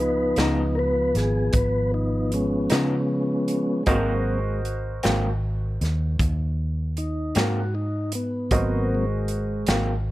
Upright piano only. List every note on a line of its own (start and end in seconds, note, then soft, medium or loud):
0.00 3.83 F4 soft
0.00 3.84 G#4 soft
0.00 3.83 B4 soft
0.00 3.84 D#5 medium
3.87 8.48 F#4 medium
3.87 8.48 A#4 medium
3.87 8.48 C5 medium
3.87 8.48 D#5 medium
8.51 10.11 F#4 soft
8.51 10.11 A#4 soft
8.51 10.11 C5 soft
8.51 10.11 D#5 soft